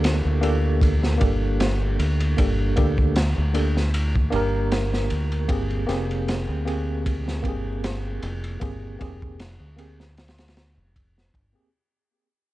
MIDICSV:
0, 0, Header, 1, 4, 480
1, 0, Start_track
1, 0, Tempo, 779221
1, 1469, Time_signature, 4, 2, 24, 8
1, 7721, End_track
2, 0, Start_track
2, 0, Title_t, "Tine electric piano"
2, 0, Program_c, 0, 4
2, 0, Note_on_c, 0, 58, 90
2, 0, Note_on_c, 0, 62, 88
2, 0, Note_on_c, 0, 67, 81
2, 0, Note_on_c, 0, 69, 95
2, 237, Note_off_c, 0, 58, 0
2, 240, Note_off_c, 0, 62, 0
2, 243, Note_off_c, 0, 67, 0
2, 247, Note_off_c, 0, 69, 0
2, 253, Note_on_c, 0, 58, 83
2, 257, Note_on_c, 0, 62, 73
2, 262, Note_on_c, 0, 67, 75
2, 269, Note_on_c, 0, 69, 95
2, 715, Note_off_c, 0, 58, 0
2, 716, Note_off_c, 0, 62, 0
2, 719, Note_off_c, 0, 67, 0
2, 722, Note_off_c, 0, 69, 0
2, 726, Note_on_c, 0, 58, 77
2, 737, Note_on_c, 0, 62, 71
2, 746, Note_on_c, 0, 67, 72
2, 759, Note_on_c, 0, 69, 82
2, 1431, Note_off_c, 0, 58, 0
2, 1437, Note_off_c, 0, 62, 0
2, 1441, Note_off_c, 0, 67, 0
2, 1447, Note_off_c, 0, 69, 0
2, 1460, Note_on_c, 0, 58, 73
2, 1465, Note_on_c, 0, 62, 71
2, 1473, Note_on_c, 0, 67, 65
2, 1479, Note_on_c, 0, 69, 79
2, 1678, Note_off_c, 0, 58, 0
2, 1680, Note_off_c, 0, 62, 0
2, 1684, Note_off_c, 0, 67, 0
2, 1688, Note_off_c, 0, 69, 0
2, 1697, Note_on_c, 0, 58, 79
2, 1706, Note_on_c, 0, 62, 69
2, 1710, Note_on_c, 0, 67, 76
2, 1714, Note_on_c, 0, 69, 83
2, 1932, Note_off_c, 0, 58, 0
2, 1937, Note_off_c, 0, 62, 0
2, 1939, Note_off_c, 0, 67, 0
2, 1941, Note_off_c, 0, 69, 0
2, 2177, Note_on_c, 0, 58, 70
2, 2181, Note_on_c, 0, 62, 66
2, 2186, Note_on_c, 0, 67, 65
2, 2191, Note_on_c, 0, 69, 82
2, 2335, Note_off_c, 0, 58, 0
2, 2337, Note_off_c, 0, 62, 0
2, 2339, Note_off_c, 0, 67, 0
2, 2341, Note_off_c, 0, 69, 0
2, 2650, Note_on_c, 0, 58, 99
2, 2658, Note_on_c, 0, 62, 87
2, 2671, Note_on_c, 0, 67, 92
2, 2684, Note_on_c, 0, 70, 104
2, 3353, Note_off_c, 0, 58, 0
2, 3357, Note_off_c, 0, 62, 0
2, 3364, Note_off_c, 0, 67, 0
2, 3370, Note_off_c, 0, 70, 0
2, 3375, Note_on_c, 0, 58, 81
2, 3379, Note_on_c, 0, 60, 74
2, 3387, Note_on_c, 0, 67, 75
2, 3394, Note_on_c, 0, 68, 90
2, 3589, Note_off_c, 0, 58, 0
2, 3591, Note_off_c, 0, 60, 0
2, 3595, Note_off_c, 0, 67, 0
2, 3599, Note_off_c, 0, 68, 0
2, 3615, Note_on_c, 0, 58, 92
2, 3622, Note_on_c, 0, 60, 91
2, 3625, Note_on_c, 0, 67, 86
2, 3630, Note_on_c, 0, 68, 96
2, 4075, Note_off_c, 0, 58, 0
2, 4079, Note_off_c, 0, 60, 0
2, 4081, Note_off_c, 0, 67, 0
2, 4083, Note_off_c, 0, 68, 0
2, 4097, Note_on_c, 0, 58, 84
2, 4100, Note_on_c, 0, 60, 78
2, 4106, Note_on_c, 0, 67, 78
2, 4111, Note_on_c, 0, 68, 92
2, 4557, Note_off_c, 0, 58, 0
2, 4558, Note_off_c, 0, 60, 0
2, 4561, Note_off_c, 0, 67, 0
2, 4564, Note_off_c, 0, 68, 0
2, 4574, Note_on_c, 0, 58, 78
2, 4585, Note_on_c, 0, 60, 70
2, 4595, Note_on_c, 0, 67, 71
2, 4609, Note_on_c, 0, 68, 89
2, 5275, Note_off_c, 0, 58, 0
2, 5280, Note_off_c, 0, 60, 0
2, 5286, Note_off_c, 0, 67, 0
2, 5293, Note_off_c, 0, 68, 0
2, 5297, Note_on_c, 0, 58, 77
2, 5304, Note_on_c, 0, 60, 72
2, 5312, Note_on_c, 0, 67, 71
2, 5315, Note_on_c, 0, 68, 86
2, 5517, Note_off_c, 0, 58, 0
2, 5520, Note_off_c, 0, 60, 0
2, 5524, Note_off_c, 0, 67, 0
2, 5526, Note_off_c, 0, 68, 0
2, 5536, Note_on_c, 0, 58, 75
2, 5541, Note_on_c, 0, 60, 72
2, 5548, Note_on_c, 0, 67, 77
2, 5551, Note_on_c, 0, 68, 89
2, 5772, Note_off_c, 0, 58, 0
2, 5775, Note_off_c, 0, 60, 0
2, 5778, Note_off_c, 0, 67, 0
2, 5780, Note_off_c, 0, 68, 0
2, 6016, Note_on_c, 0, 58, 78
2, 6022, Note_on_c, 0, 60, 71
2, 6032, Note_on_c, 0, 67, 70
2, 6036, Note_on_c, 0, 68, 81
2, 6174, Note_off_c, 0, 58, 0
2, 6177, Note_off_c, 0, 60, 0
2, 6182, Note_off_c, 0, 67, 0
2, 6184, Note_off_c, 0, 68, 0
2, 7102, Note_on_c, 0, 58, 72
2, 7106, Note_on_c, 0, 60, 73
2, 7115, Note_on_c, 0, 67, 76
2, 7118, Note_on_c, 0, 68, 88
2, 7194, Note_off_c, 0, 58, 0
2, 7196, Note_off_c, 0, 60, 0
2, 7200, Note_off_c, 0, 67, 0
2, 7202, Note_off_c, 0, 68, 0
2, 7721, End_track
3, 0, Start_track
3, 0, Title_t, "Fingered electric bass"
3, 0, Program_c, 1, 33
3, 0, Note_on_c, 1, 38, 101
3, 133, Note_off_c, 1, 38, 0
3, 155, Note_on_c, 1, 38, 85
3, 725, Note_off_c, 1, 38, 0
3, 750, Note_on_c, 1, 31, 86
3, 1208, Note_off_c, 1, 31, 0
3, 1228, Note_on_c, 1, 38, 102
3, 1442, Note_off_c, 1, 38, 0
3, 1468, Note_on_c, 1, 31, 98
3, 1682, Note_off_c, 1, 31, 0
3, 1710, Note_on_c, 1, 38, 103
3, 2055, Note_off_c, 1, 38, 0
3, 2082, Note_on_c, 1, 38, 85
3, 2649, Note_off_c, 1, 38, 0
3, 2670, Note_on_c, 1, 31, 91
3, 3128, Note_off_c, 1, 31, 0
3, 3150, Note_on_c, 1, 38, 96
3, 3363, Note_off_c, 1, 38, 0
3, 3382, Note_on_c, 1, 31, 104
3, 3599, Note_off_c, 1, 31, 0
3, 3630, Note_on_c, 1, 29, 108
3, 3975, Note_off_c, 1, 29, 0
3, 3996, Note_on_c, 1, 38, 86
3, 4566, Note_off_c, 1, 38, 0
3, 4580, Note_on_c, 1, 31, 89
3, 5043, Note_off_c, 1, 31, 0
3, 5069, Note_on_c, 1, 29, 99
3, 5282, Note_off_c, 1, 29, 0
3, 5308, Note_on_c, 1, 31, 101
3, 5522, Note_off_c, 1, 31, 0
3, 5550, Note_on_c, 1, 29, 104
3, 5895, Note_off_c, 1, 29, 0
3, 5915, Note_on_c, 1, 38, 90
3, 6636, Note_on_c, 1, 29, 85
3, 6645, Note_off_c, 1, 38, 0
3, 6966, Note_off_c, 1, 29, 0
3, 6985, Note_on_c, 1, 31, 92
3, 7102, Note_off_c, 1, 31, 0
3, 7721, End_track
4, 0, Start_track
4, 0, Title_t, "Drums"
4, 25, Note_on_c, 9, 51, 95
4, 30, Note_on_c, 9, 38, 105
4, 86, Note_off_c, 9, 51, 0
4, 92, Note_off_c, 9, 38, 0
4, 264, Note_on_c, 9, 51, 71
4, 326, Note_off_c, 9, 51, 0
4, 502, Note_on_c, 9, 36, 116
4, 509, Note_on_c, 9, 51, 81
4, 563, Note_off_c, 9, 36, 0
4, 570, Note_off_c, 9, 51, 0
4, 637, Note_on_c, 9, 38, 51
4, 699, Note_off_c, 9, 38, 0
4, 744, Note_on_c, 9, 51, 74
4, 748, Note_on_c, 9, 36, 82
4, 805, Note_off_c, 9, 51, 0
4, 809, Note_off_c, 9, 36, 0
4, 987, Note_on_c, 9, 51, 89
4, 991, Note_on_c, 9, 38, 126
4, 1048, Note_off_c, 9, 51, 0
4, 1053, Note_off_c, 9, 38, 0
4, 1229, Note_on_c, 9, 51, 68
4, 1291, Note_off_c, 9, 51, 0
4, 1358, Note_on_c, 9, 51, 52
4, 1419, Note_off_c, 9, 51, 0
4, 1467, Note_on_c, 9, 51, 98
4, 1469, Note_on_c, 9, 36, 102
4, 1529, Note_off_c, 9, 51, 0
4, 1530, Note_off_c, 9, 36, 0
4, 1704, Note_on_c, 9, 51, 64
4, 1710, Note_on_c, 9, 36, 97
4, 1766, Note_off_c, 9, 51, 0
4, 1771, Note_off_c, 9, 36, 0
4, 1835, Note_on_c, 9, 36, 83
4, 1897, Note_off_c, 9, 36, 0
4, 1945, Note_on_c, 9, 51, 86
4, 1950, Note_on_c, 9, 38, 125
4, 2006, Note_off_c, 9, 51, 0
4, 2012, Note_off_c, 9, 38, 0
4, 2184, Note_on_c, 9, 51, 71
4, 2246, Note_off_c, 9, 51, 0
4, 2322, Note_on_c, 9, 38, 47
4, 2383, Note_off_c, 9, 38, 0
4, 2427, Note_on_c, 9, 51, 91
4, 2488, Note_off_c, 9, 51, 0
4, 2559, Note_on_c, 9, 36, 100
4, 2621, Note_off_c, 9, 36, 0
4, 2663, Note_on_c, 9, 51, 65
4, 2724, Note_off_c, 9, 51, 0
4, 2906, Note_on_c, 9, 51, 83
4, 2909, Note_on_c, 9, 38, 112
4, 2967, Note_off_c, 9, 51, 0
4, 2971, Note_off_c, 9, 38, 0
4, 3041, Note_on_c, 9, 38, 54
4, 3102, Note_off_c, 9, 38, 0
4, 3143, Note_on_c, 9, 51, 65
4, 3204, Note_off_c, 9, 51, 0
4, 3275, Note_on_c, 9, 51, 45
4, 3337, Note_off_c, 9, 51, 0
4, 3381, Note_on_c, 9, 51, 93
4, 3382, Note_on_c, 9, 36, 113
4, 3442, Note_off_c, 9, 51, 0
4, 3444, Note_off_c, 9, 36, 0
4, 3514, Note_on_c, 9, 51, 39
4, 3575, Note_off_c, 9, 51, 0
4, 3627, Note_on_c, 9, 38, 46
4, 3627, Note_on_c, 9, 51, 62
4, 3688, Note_off_c, 9, 38, 0
4, 3688, Note_off_c, 9, 51, 0
4, 3762, Note_on_c, 9, 51, 45
4, 3824, Note_off_c, 9, 51, 0
4, 3871, Note_on_c, 9, 51, 84
4, 3875, Note_on_c, 9, 38, 107
4, 3933, Note_off_c, 9, 51, 0
4, 3937, Note_off_c, 9, 38, 0
4, 4112, Note_on_c, 9, 51, 70
4, 4173, Note_off_c, 9, 51, 0
4, 4349, Note_on_c, 9, 36, 117
4, 4349, Note_on_c, 9, 51, 90
4, 4411, Note_off_c, 9, 36, 0
4, 4411, Note_off_c, 9, 51, 0
4, 4484, Note_on_c, 9, 38, 55
4, 4546, Note_off_c, 9, 38, 0
4, 4582, Note_on_c, 9, 36, 91
4, 4588, Note_on_c, 9, 51, 69
4, 4643, Note_off_c, 9, 36, 0
4, 4649, Note_off_c, 9, 51, 0
4, 4829, Note_on_c, 9, 51, 92
4, 4832, Note_on_c, 9, 38, 117
4, 4890, Note_off_c, 9, 51, 0
4, 4893, Note_off_c, 9, 38, 0
4, 5067, Note_on_c, 9, 51, 67
4, 5128, Note_off_c, 9, 51, 0
4, 5197, Note_on_c, 9, 51, 52
4, 5259, Note_off_c, 9, 51, 0
4, 5305, Note_on_c, 9, 51, 86
4, 5307, Note_on_c, 9, 36, 118
4, 5367, Note_off_c, 9, 51, 0
4, 5368, Note_off_c, 9, 36, 0
4, 5548, Note_on_c, 9, 51, 68
4, 5549, Note_on_c, 9, 36, 89
4, 5610, Note_off_c, 9, 51, 0
4, 5611, Note_off_c, 9, 36, 0
4, 5681, Note_on_c, 9, 36, 101
4, 5743, Note_off_c, 9, 36, 0
4, 5788, Note_on_c, 9, 51, 99
4, 5792, Note_on_c, 9, 38, 114
4, 5849, Note_off_c, 9, 51, 0
4, 5853, Note_off_c, 9, 38, 0
4, 6027, Note_on_c, 9, 51, 68
4, 6089, Note_off_c, 9, 51, 0
4, 6160, Note_on_c, 9, 38, 55
4, 6222, Note_off_c, 9, 38, 0
4, 6267, Note_on_c, 9, 51, 60
4, 6273, Note_on_c, 9, 38, 97
4, 6329, Note_off_c, 9, 51, 0
4, 6332, Note_on_c, 9, 51, 70
4, 6335, Note_off_c, 9, 38, 0
4, 6337, Note_on_c, 9, 38, 103
4, 6393, Note_off_c, 9, 51, 0
4, 6395, Note_on_c, 9, 51, 73
4, 6399, Note_off_c, 9, 38, 0
4, 6400, Note_on_c, 9, 38, 99
4, 6455, Note_off_c, 9, 51, 0
4, 6455, Note_on_c, 9, 51, 67
4, 6460, Note_off_c, 9, 38, 0
4, 6460, Note_on_c, 9, 38, 86
4, 6509, Note_off_c, 9, 51, 0
4, 6509, Note_on_c, 9, 51, 75
4, 6511, Note_off_c, 9, 38, 0
4, 6511, Note_on_c, 9, 38, 112
4, 6571, Note_off_c, 9, 51, 0
4, 6573, Note_off_c, 9, 38, 0
4, 6750, Note_on_c, 9, 36, 96
4, 6751, Note_on_c, 9, 51, 86
4, 6812, Note_off_c, 9, 36, 0
4, 6812, Note_off_c, 9, 51, 0
4, 6886, Note_on_c, 9, 38, 46
4, 6948, Note_off_c, 9, 38, 0
4, 6985, Note_on_c, 9, 36, 88
4, 6989, Note_on_c, 9, 51, 57
4, 7046, Note_off_c, 9, 36, 0
4, 7050, Note_off_c, 9, 51, 0
4, 7721, End_track
0, 0, End_of_file